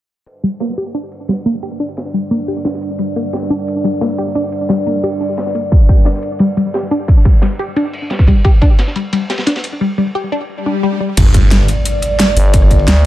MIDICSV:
0, 0, Header, 1, 8, 480
1, 0, Start_track
1, 0, Key_signature, -2, "minor"
1, 0, Tempo, 340909
1, 372, Time_signature, 4, 2, 24, 8
1, 18390, End_track
2, 0, Start_track
2, 0, Title_t, "Analog synth pad"
2, 0, Program_c, 0, 89
2, 371, Note_on_c, 0, 62, 76
2, 372, Note_on_c, 0, 55, 83
2, 372, Note_on_c, 0, 70, 75
2, 372, Note_on_c, 0, 74, 90
2, 13755, Note_off_c, 0, 62, 0
2, 13756, Note_off_c, 0, 55, 0
2, 13756, Note_off_c, 0, 70, 0
2, 13756, Note_off_c, 0, 74, 0
2, 15732, Note_on_c, 0, 62, 79
2, 15732, Note_on_c, 0, 70, 78
2, 15733, Note_on_c, 0, 55, 88
2, 15733, Note_on_c, 0, 74, 95
2, 18390, Note_off_c, 0, 55, 0
2, 18390, Note_off_c, 0, 62, 0
2, 18390, Note_off_c, 0, 70, 0
2, 18390, Note_off_c, 0, 74, 0
2, 18390, End_track
3, 0, Start_track
3, 0, Title_t, "Synth arpeggio sound"
3, 0, Program_c, 1, 84
3, 612, Note_on_c, 1, 55, 76
3, 731, Note_off_c, 1, 55, 0
3, 853, Note_on_c, 1, 58, 102
3, 1030, Note_off_c, 1, 58, 0
3, 1093, Note_on_c, 1, 67, 98
3, 1211, Note_off_c, 1, 67, 0
3, 1332, Note_on_c, 1, 62, 98
3, 1450, Note_off_c, 1, 62, 0
3, 1812, Note_on_c, 1, 55, 73
3, 1931, Note_off_c, 1, 55, 0
3, 2052, Note_on_c, 1, 58, 102
3, 2230, Note_off_c, 1, 58, 0
3, 2292, Note_on_c, 1, 67, 98
3, 2410, Note_off_c, 1, 67, 0
3, 2532, Note_on_c, 1, 62, 101
3, 2650, Note_off_c, 1, 62, 0
3, 3012, Note_on_c, 1, 55, 75
3, 3131, Note_off_c, 1, 55, 0
3, 3252, Note_on_c, 1, 58, 100
3, 3430, Note_off_c, 1, 58, 0
3, 3492, Note_on_c, 1, 67, 96
3, 3610, Note_off_c, 1, 67, 0
3, 3732, Note_on_c, 1, 62, 99
3, 3850, Note_off_c, 1, 62, 0
3, 4212, Note_on_c, 1, 55, 83
3, 4331, Note_off_c, 1, 55, 0
3, 4452, Note_on_c, 1, 58, 100
3, 4630, Note_off_c, 1, 58, 0
3, 4692, Note_on_c, 1, 67, 99
3, 4811, Note_off_c, 1, 67, 0
3, 4932, Note_on_c, 1, 62, 96
3, 5051, Note_off_c, 1, 62, 0
3, 5411, Note_on_c, 1, 55, 74
3, 5530, Note_off_c, 1, 55, 0
3, 5651, Note_on_c, 1, 58, 100
3, 5829, Note_off_c, 1, 58, 0
3, 5890, Note_on_c, 1, 67, 100
3, 6010, Note_off_c, 1, 67, 0
3, 6130, Note_on_c, 1, 62, 103
3, 6250, Note_off_c, 1, 62, 0
3, 6611, Note_on_c, 1, 55, 78
3, 6730, Note_off_c, 1, 55, 0
3, 6851, Note_on_c, 1, 58, 95
3, 7029, Note_off_c, 1, 58, 0
3, 7090, Note_on_c, 1, 67, 99
3, 7210, Note_off_c, 1, 67, 0
3, 7330, Note_on_c, 1, 62, 75
3, 7450, Note_off_c, 1, 62, 0
3, 7811, Note_on_c, 1, 58, 77
3, 7930, Note_off_c, 1, 58, 0
3, 8050, Note_on_c, 1, 55, 81
3, 8229, Note_off_c, 1, 55, 0
3, 8292, Note_on_c, 1, 67, 97
3, 8410, Note_off_c, 1, 67, 0
3, 8532, Note_on_c, 1, 62, 98
3, 8650, Note_off_c, 1, 62, 0
3, 9011, Note_on_c, 1, 55, 83
3, 9130, Note_off_c, 1, 55, 0
3, 9252, Note_on_c, 1, 55, 73
3, 9430, Note_off_c, 1, 55, 0
3, 9491, Note_on_c, 1, 67, 99
3, 9610, Note_off_c, 1, 67, 0
3, 9732, Note_on_c, 1, 62, 99
3, 9851, Note_off_c, 1, 62, 0
3, 10212, Note_on_c, 1, 55, 75
3, 10331, Note_off_c, 1, 55, 0
3, 10452, Note_on_c, 1, 55, 76
3, 10630, Note_off_c, 1, 55, 0
3, 10692, Note_on_c, 1, 67, 99
3, 10810, Note_off_c, 1, 67, 0
3, 10932, Note_on_c, 1, 62, 99
3, 11051, Note_off_c, 1, 62, 0
3, 11412, Note_on_c, 1, 55, 78
3, 11531, Note_off_c, 1, 55, 0
3, 11653, Note_on_c, 1, 55, 77
3, 11830, Note_off_c, 1, 55, 0
3, 11893, Note_on_c, 1, 67, 102
3, 12011, Note_off_c, 1, 67, 0
3, 12133, Note_on_c, 1, 62, 102
3, 12251, Note_off_c, 1, 62, 0
3, 12613, Note_on_c, 1, 55, 76
3, 12731, Note_off_c, 1, 55, 0
3, 12852, Note_on_c, 1, 55, 81
3, 13030, Note_off_c, 1, 55, 0
3, 13092, Note_on_c, 1, 67, 99
3, 13211, Note_off_c, 1, 67, 0
3, 13332, Note_on_c, 1, 62, 99
3, 13451, Note_off_c, 1, 62, 0
3, 13813, Note_on_c, 1, 55, 83
3, 13931, Note_off_c, 1, 55, 0
3, 14052, Note_on_c, 1, 55, 75
3, 14230, Note_off_c, 1, 55, 0
3, 14293, Note_on_c, 1, 67, 103
3, 14411, Note_off_c, 1, 67, 0
3, 14533, Note_on_c, 1, 62, 101
3, 14651, Note_off_c, 1, 62, 0
3, 15013, Note_on_c, 1, 62, 74
3, 15131, Note_off_c, 1, 62, 0
3, 15253, Note_on_c, 1, 55, 102
3, 15323, Note_off_c, 1, 55, 0
3, 15494, Note_on_c, 1, 55, 78
3, 15611, Note_off_c, 1, 55, 0
3, 18390, End_track
4, 0, Start_track
4, 0, Title_t, "FM bass"
4, 0, Program_c, 2, 39
4, 17412, Note_on_c, 2, 31, 97
4, 18113, Note_off_c, 2, 31, 0
4, 18132, Note_on_c, 2, 38, 100
4, 18390, Note_off_c, 2, 38, 0
4, 18390, End_track
5, 0, Start_track
5, 0, Title_t, "Detuned saw bass"
5, 0, Program_c, 3, 39
5, 15732, Note_on_c, 3, 31, 100
5, 16433, Note_off_c, 3, 31, 0
5, 18390, End_track
6, 0, Start_track
6, 0, Title_t, "Impact"
6, 0, Program_c, 4, 103
6, 15732, Note_on_c, 4, 60, 81
6, 17652, Note_off_c, 4, 60, 0
6, 18390, End_track
7, 0, Start_track
7, 0, Title_t, "Swell"
7, 0, Program_c, 5, 103
7, 14772, Note_on_c, 5, 60, 72
7, 15732, Note_off_c, 5, 60, 0
7, 18390, End_track
8, 0, Start_track
8, 0, Title_t, "Drums"
8, 372, Note_on_c, 9, 42, 93
8, 378, Note_on_c, 9, 51, 82
8, 513, Note_off_c, 9, 42, 0
8, 519, Note_off_c, 9, 51, 0
8, 612, Note_on_c, 9, 42, 64
8, 615, Note_on_c, 9, 51, 69
8, 753, Note_off_c, 9, 42, 0
8, 755, Note_off_c, 9, 51, 0
8, 842, Note_on_c, 9, 51, 85
8, 848, Note_on_c, 9, 38, 104
8, 852, Note_on_c, 9, 42, 93
8, 978, Note_off_c, 9, 38, 0
8, 978, Note_on_c, 9, 38, 45
8, 983, Note_off_c, 9, 51, 0
8, 993, Note_off_c, 9, 42, 0
8, 1088, Note_on_c, 9, 51, 67
8, 1093, Note_on_c, 9, 42, 65
8, 1119, Note_off_c, 9, 38, 0
8, 1229, Note_off_c, 9, 51, 0
8, 1233, Note_off_c, 9, 42, 0
8, 1332, Note_on_c, 9, 42, 94
8, 1336, Note_on_c, 9, 51, 86
8, 1472, Note_off_c, 9, 42, 0
8, 1477, Note_off_c, 9, 51, 0
8, 1572, Note_on_c, 9, 42, 65
8, 1574, Note_on_c, 9, 51, 71
8, 1713, Note_off_c, 9, 42, 0
8, 1715, Note_off_c, 9, 51, 0
8, 1807, Note_on_c, 9, 51, 84
8, 1812, Note_on_c, 9, 42, 90
8, 1817, Note_on_c, 9, 38, 113
8, 1948, Note_off_c, 9, 51, 0
8, 1953, Note_off_c, 9, 42, 0
8, 1958, Note_off_c, 9, 38, 0
8, 2051, Note_on_c, 9, 51, 67
8, 2052, Note_on_c, 9, 42, 64
8, 2191, Note_off_c, 9, 51, 0
8, 2193, Note_off_c, 9, 42, 0
8, 2290, Note_on_c, 9, 51, 87
8, 2291, Note_on_c, 9, 42, 92
8, 2430, Note_off_c, 9, 51, 0
8, 2432, Note_off_c, 9, 42, 0
8, 2530, Note_on_c, 9, 51, 69
8, 2531, Note_on_c, 9, 42, 63
8, 2655, Note_off_c, 9, 51, 0
8, 2655, Note_on_c, 9, 51, 42
8, 2672, Note_off_c, 9, 42, 0
8, 2771, Note_off_c, 9, 51, 0
8, 2771, Note_on_c, 9, 42, 91
8, 2771, Note_on_c, 9, 51, 88
8, 2782, Note_on_c, 9, 38, 116
8, 2912, Note_off_c, 9, 42, 0
8, 2912, Note_off_c, 9, 51, 0
8, 2923, Note_off_c, 9, 38, 0
8, 3011, Note_on_c, 9, 42, 63
8, 3015, Note_on_c, 9, 51, 59
8, 3152, Note_off_c, 9, 42, 0
8, 3155, Note_off_c, 9, 51, 0
8, 3250, Note_on_c, 9, 42, 88
8, 3252, Note_on_c, 9, 51, 82
8, 3391, Note_off_c, 9, 42, 0
8, 3393, Note_off_c, 9, 51, 0
8, 3491, Note_on_c, 9, 42, 64
8, 3491, Note_on_c, 9, 46, 72
8, 3631, Note_off_c, 9, 46, 0
8, 3632, Note_off_c, 9, 42, 0
8, 3728, Note_on_c, 9, 38, 100
8, 3730, Note_on_c, 9, 42, 92
8, 3733, Note_on_c, 9, 51, 81
8, 3855, Note_off_c, 9, 38, 0
8, 3855, Note_on_c, 9, 38, 50
8, 3871, Note_off_c, 9, 42, 0
8, 3874, Note_off_c, 9, 51, 0
8, 3970, Note_on_c, 9, 42, 65
8, 3976, Note_on_c, 9, 51, 64
8, 3996, Note_off_c, 9, 38, 0
8, 4111, Note_off_c, 9, 42, 0
8, 4117, Note_off_c, 9, 51, 0
8, 4204, Note_on_c, 9, 51, 83
8, 4211, Note_on_c, 9, 42, 89
8, 4345, Note_off_c, 9, 51, 0
8, 4352, Note_off_c, 9, 42, 0
8, 4451, Note_on_c, 9, 42, 61
8, 4453, Note_on_c, 9, 51, 68
8, 4592, Note_off_c, 9, 42, 0
8, 4594, Note_off_c, 9, 51, 0
8, 4688, Note_on_c, 9, 51, 86
8, 4691, Note_on_c, 9, 42, 88
8, 4702, Note_on_c, 9, 38, 117
8, 4816, Note_off_c, 9, 38, 0
8, 4816, Note_on_c, 9, 38, 46
8, 4829, Note_off_c, 9, 51, 0
8, 4832, Note_off_c, 9, 42, 0
8, 4928, Note_on_c, 9, 51, 66
8, 4931, Note_on_c, 9, 42, 59
8, 4956, Note_off_c, 9, 38, 0
8, 5069, Note_off_c, 9, 51, 0
8, 5072, Note_off_c, 9, 42, 0
8, 5170, Note_on_c, 9, 42, 88
8, 5183, Note_on_c, 9, 51, 86
8, 5311, Note_off_c, 9, 42, 0
8, 5324, Note_off_c, 9, 51, 0
8, 5410, Note_on_c, 9, 42, 62
8, 5414, Note_on_c, 9, 51, 70
8, 5551, Note_off_c, 9, 42, 0
8, 5555, Note_off_c, 9, 51, 0
8, 5649, Note_on_c, 9, 38, 112
8, 5650, Note_on_c, 9, 42, 88
8, 5651, Note_on_c, 9, 51, 87
8, 5790, Note_off_c, 9, 38, 0
8, 5791, Note_off_c, 9, 42, 0
8, 5792, Note_off_c, 9, 51, 0
8, 5890, Note_on_c, 9, 51, 66
8, 5891, Note_on_c, 9, 42, 61
8, 6030, Note_off_c, 9, 51, 0
8, 6031, Note_off_c, 9, 42, 0
8, 6129, Note_on_c, 9, 51, 92
8, 6130, Note_on_c, 9, 42, 85
8, 6270, Note_off_c, 9, 51, 0
8, 6271, Note_off_c, 9, 42, 0
8, 6367, Note_on_c, 9, 51, 62
8, 6370, Note_on_c, 9, 42, 58
8, 6490, Note_off_c, 9, 51, 0
8, 6490, Note_on_c, 9, 51, 40
8, 6511, Note_off_c, 9, 42, 0
8, 6603, Note_on_c, 9, 38, 104
8, 6610, Note_on_c, 9, 42, 86
8, 6617, Note_off_c, 9, 51, 0
8, 6617, Note_on_c, 9, 51, 76
8, 6744, Note_off_c, 9, 38, 0
8, 6751, Note_off_c, 9, 42, 0
8, 6758, Note_off_c, 9, 51, 0
8, 6850, Note_on_c, 9, 42, 59
8, 6855, Note_on_c, 9, 51, 65
8, 6991, Note_off_c, 9, 42, 0
8, 6996, Note_off_c, 9, 51, 0
8, 7090, Note_on_c, 9, 42, 84
8, 7091, Note_on_c, 9, 51, 89
8, 7231, Note_off_c, 9, 42, 0
8, 7231, Note_off_c, 9, 51, 0
8, 7329, Note_on_c, 9, 46, 77
8, 7330, Note_on_c, 9, 42, 59
8, 7470, Note_off_c, 9, 46, 0
8, 7471, Note_off_c, 9, 42, 0
8, 7563, Note_on_c, 9, 51, 77
8, 7571, Note_on_c, 9, 42, 88
8, 7573, Note_on_c, 9, 38, 101
8, 7686, Note_off_c, 9, 38, 0
8, 7686, Note_on_c, 9, 38, 56
8, 7704, Note_off_c, 9, 51, 0
8, 7712, Note_off_c, 9, 42, 0
8, 7811, Note_on_c, 9, 42, 60
8, 7815, Note_on_c, 9, 51, 64
8, 7827, Note_off_c, 9, 38, 0
8, 7952, Note_off_c, 9, 42, 0
8, 7956, Note_off_c, 9, 51, 0
8, 8051, Note_on_c, 9, 36, 116
8, 8051, Note_on_c, 9, 42, 87
8, 8058, Note_on_c, 9, 51, 94
8, 8192, Note_off_c, 9, 36, 0
8, 8192, Note_off_c, 9, 42, 0
8, 8199, Note_off_c, 9, 51, 0
8, 8291, Note_on_c, 9, 36, 104
8, 8291, Note_on_c, 9, 42, 60
8, 8295, Note_on_c, 9, 51, 70
8, 8431, Note_off_c, 9, 42, 0
8, 8432, Note_off_c, 9, 36, 0
8, 8435, Note_off_c, 9, 51, 0
8, 8519, Note_on_c, 9, 38, 115
8, 8531, Note_on_c, 9, 42, 83
8, 8535, Note_on_c, 9, 51, 74
8, 8651, Note_off_c, 9, 38, 0
8, 8651, Note_on_c, 9, 38, 45
8, 8672, Note_off_c, 9, 42, 0
8, 8676, Note_off_c, 9, 51, 0
8, 8762, Note_on_c, 9, 51, 64
8, 8771, Note_on_c, 9, 42, 62
8, 8792, Note_off_c, 9, 38, 0
8, 8903, Note_off_c, 9, 51, 0
8, 8912, Note_off_c, 9, 42, 0
8, 8997, Note_on_c, 9, 51, 85
8, 9010, Note_on_c, 9, 42, 86
8, 9138, Note_off_c, 9, 51, 0
8, 9151, Note_off_c, 9, 42, 0
8, 9251, Note_on_c, 9, 42, 60
8, 9254, Note_on_c, 9, 51, 67
8, 9392, Note_off_c, 9, 42, 0
8, 9395, Note_off_c, 9, 51, 0
8, 9492, Note_on_c, 9, 42, 86
8, 9501, Note_on_c, 9, 51, 83
8, 9504, Note_on_c, 9, 38, 106
8, 9632, Note_off_c, 9, 42, 0
8, 9642, Note_off_c, 9, 51, 0
8, 9645, Note_off_c, 9, 38, 0
8, 9731, Note_on_c, 9, 51, 66
8, 9732, Note_on_c, 9, 42, 60
8, 9872, Note_off_c, 9, 42, 0
8, 9872, Note_off_c, 9, 51, 0
8, 9971, Note_on_c, 9, 36, 109
8, 9972, Note_on_c, 9, 42, 89
8, 9981, Note_on_c, 9, 51, 82
8, 10112, Note_off_c, 9, 36, 0
8, 10112, Note_off_c, 9, 42, 0
8, 10122, Note_off_c, 9, 51, 0
8, 10211, Note_on_c, 9, 36, 98
8, 10211, Note_on_c, 9, 42, 63
8, 10215, Note_on_c, 9, 51, 68
8, 10330, Note_off_c, 9, 51, 0
8, 10330, Note_on_c, 9, 51, 39
8, 10352, Note_off_c, 9, 36, 0
8, 10352, Note_off_c, 9, 42, 0
8, 10442, Note_on_c, 9, 38, 111
8, 10451, Note_on_c, 9, 42, 89
8, 10454, Note_off_c, 9, 51, 0
8, 10454, Note_on_c, 9, 51, 81
8, 10583, Note_off_c, 9, 38, 0
8, 10592, Note_off_c, 9, 42, 0
8, 10595, Note_off_c, 9, 51, 0
8, 10691, Note_on_c, 9, 42, 64
8, 10702, Note_on_c, 9, 51, 59
8, 10832, Note_off_c, 9, 42, 0
8, 10843, Note_off_c, 9, 51, 0
8, 10932, Note_on_c, 9, 42, 90
8, 10933, Note_on_c, 9, 51, 85
8, 11073, Note_off_c, 9, 42, 0
8, 11074, Note_off_c, 9, 51, 0
8, 11172, Note_on_c, 9, 42, 63
8, 11177, Note_on_c, 9, 46, 81
8, 11313, Note_off_c, 9, 42, 0
8, 11317, Note_off_c, 9, 46, 0
8, 11403, Note_on_c, 9, 51, 77
8, 11412, Note_on_c, 9, 42, 92
8, 11414, Note_on_c, 9, 38, 109
8, 11527, Note_off_c, 9, 38, 0
8, 11527, Note_on_c, 9, 38, 57
8, 11532, Note_on_c, 9, 36, 96
8, 11544, Note_off_c, 9, 51, 0
8, 11553, Note_off_c, 9, 42, 0
8, 11652, Note_off_c, 9, 36, 0
8, 11652, Note_on_c, 9, 36, 57
8, 11652, Note_on_c, 9, 42, 64
8, 11658, Note_on_c, 9, 51, 64
8, 11668, Note_off_c, 9, 38, 0
8, 11793, Note_off_c, 9, 36, 0
8, 11793, Note_off_c, 9, 42, 0
8, 11799, Note_off_c, 9, 51, 0
8, 11892, Note_on_c, 9, 36, 108
8, 11892, Note_on_c, 9, 42, 94
8, 11897, Note_on_c, 9, 51, 89
8, 12033, Note_off_c, 9, 36, 0
8, 12033, Note_off_c, 9, 42, 0
8, 12037, Note_off_c, 9, 51, 0
8, 12132, Note_on_c, 9, 36, 99
8, 12132, Note_on_c, 9, 42, 66
8, 12132, Note_on_c, 9, 51, 61
8, 12273, Note_off_c, 9, 36, 0
8, 12273, Note_off_c, 9, 42, 0
8, 12273, Note_off_c, 9, 51, 0
8, 12372, Note_on_c, 9, 38, 102
8, 12372, Note_on_c, 9, 42, 94
8, 12377, Note_on_c, 9, 51, 84
8, 12489, Note_off_c, 9, 38, 0
8, 12489, Note_on_c, 9, 38, 46
8, 12513, Note_off_c, 9, 42, 0
8, 12518, Note_off_c, 9, 51, 0
8, 12612, Note_on_c, 9, 42, 67
8, 12628, Note_on_c, 9, 51, 66
8, 12629, Note_off_c, 9, 38, 0
8, 12753, Note_off_c, 9, 42, 0
8, 12768, Note_off_c, 9, 51, 0
8, 12852, Note_on_c, 9, 42, 94
8, 12854, Note_on_c, 9, 51, 94
8, 12993, Note_off_c, 9, 42, 0
8, 12995, Note_off_c, 9, 51, 0
8, 13091, Note_on_c, 9, 38, 108
8, 13092, Note_on_c, 9, 42, 66
8, 13099, Note_on_c, 9, 51, 71
8, 13202, Note_off_c, 9, 51, 0
8, 13202, Note_on_c, 9, 51, 77
8, 13214, Note_off_c, 9, 38, 0
8, 13214, Note_on_c, 9, 38, 106
8, 13233, Note_off_c, 9, 42, 0
8, 13325, Note_off_c, 9, 51, 0
8, 13325, Note_on_c, 9, 51, 83
8, 13332, Note_on_c, 9, 42, 95
8, 13338, Note_off_c, 9, 38, 0
8, 13338, Note_on_c, 9, 38, 97
8, 13455, Note_off_c, 9, 51, 0
8, 13455, Note_on_c, 9, 51, 75
8, 13461, Note_off_c, 9, 38, 0
8, 13461, Note_on_c, 9, 38, 93
8, 13473, Note_off_c, 9, 42, 0
8, 13572, Note_on_c, 9, 42, 67
8, 13582, Note_off_c, 9, 51, 0
8, 13582, Note_on_c, 9, 51, 67
8, 13602, Note_off_c, 9, 38, 0
8, 13713, Note_off_c, 9, 42, 0
8, 13722, Note_off_c, 9, 51, 0
8, 15728, Note_on_c, 9, 51, 85
8, 15732, Note_on_c, 9, 42, 101
8, 15732, Note_on_c, 9, 49, 104
8, 15733, Note_on_c, 9, 36, 117
8, 15852, Note_on_c, 9, 37, 38
8, 15869, Note_off_c, 9, 51, 0
8, 15873, Note_off_c, 9, 36, 0
8, 15873, Note_off_c, 9, 42, 0
8, 15873, Note_off_c, 9, 49, 0
8, 15971, Note_on_c, 9, 42, 69
8, 15972, Note_on_c, 9, 51, 69
8, 15973, Note_on_c, 9, 36, 108
8, 15993, Note_off_c, 9, 37, 0
8, 16112, Note_off_c, 9, 42, 0
8, 16113, Note_off_c, 9, 51, 0
8, 16114, Note_off_c, 9, 36, 0
8, 16206, Note_on_c, 9, 38, 111
8, 16208, Note_on_c, 9, 51, 87
8, 16212, Note_off_c, 9, 38, 0
8, 16212, Note_on_c, 9, 38, 124
8, 16212, Note_on_c, 9, 42, 98
8, 16334, Note_off_c, 9, 38, 0
8, 16334, Note_on_c, 9, 38, 52
8, 16349, Note_off_c, 9, 51, 0
8, 16353, Note_off_c, 9, 42, 0
8, 16451, Note_on_c, 9, 42, 69
8, 16456, Note_on_c, 9, 51, 68
8, 16475, Note_off_c, 9, 38, 0
8, 16592, Note_off_c, 9, 42, 0
8, 16597, Note_off_c, 9, 51, 0
8, 16692, Note_on_c, 9, 42, 99
8, 16699, Note_on_c, 9, 51, 84
8, 16833, Note_off_c, 9, 42, 0
8, 16840, Note_off_c, 9, 51, 0
8, 16925, Note_on_c, 9, 51, 63
8, 16932, Note_on_c, 9, 42, 69
8, 17066, Note_off_c, 9, 51, 0
8, 17073, Note_off_c, 9, 42, 0
8, 17171, Note_on_c, 9, 38, 117
8, 17171, Note_on_c, 9, 51, 93
8, 17172, Note_off_c, 9, 38, 0
8, 17172, Note_on_c, 9, 38, 123
8, 17172, Note_on_c, 9, 42, 99
8, 17312, Note_off_c, 9, 51, 0
8, 17313, Note_off_c, 9, 38, 0
8, 17313, Note_off_c, 9, 42, 0
8, 17411, Note_on_c, 9, 46, 76
8, 17417, Note_on_c, 9, 51, 69
8, 17552, Note_off_c, 9, 46, 0
8, 17558, Note_off_c, 9, 51, 0
8, 17647, Note_on_c, 9, 51, 92
8, 17651, Note_on_c, 9, 42, 96
8, 17652, Note_on_c, 9, 36, 127
8, 17771, Note_on_c, 9, 37, 38
8, 17788, Note_off_c, 9, 51, 0
8, 17792, Note_off_c, 9, 42, 0
8, 17793, Note_off_c, 9, 36, 0
8, 17891, Note_on_c, 9, 42, 67
8, 17892, Note_on_c, 9, 36, 113
8, 17899, Note_on_c, 9, 51, 64
8, 17912, Note_off_c, 9, 37, 0
8, 18012, Note_off_c, 9, 51, 0
8, 18012, Note_on_c, 9, 51, 44
8, 18032, Note_off_c, 9, 42, 0
8, 18033, Note_off_c, 9, 36, 0
8, 18131, Note_on_c, 9, 38, 127
8, 18131, Note_on_c, 9, 42, 94
8, 18132, Note_off_c, 9, 51, 0
8, 18132, Note_on_c, 9, 51, 90
8, 18133, Note_off_c, 9, 38, 0
8, 18133, Note_on_c, 9, 38, 115
8, 18272, Note_off_c, 9, 42, 0
8, 18273, Note_off_c, 9, 38, 0
8, 18273, Note_off_c, 9, 51, 0
8, 18390, End_track
0, 0, End_of_file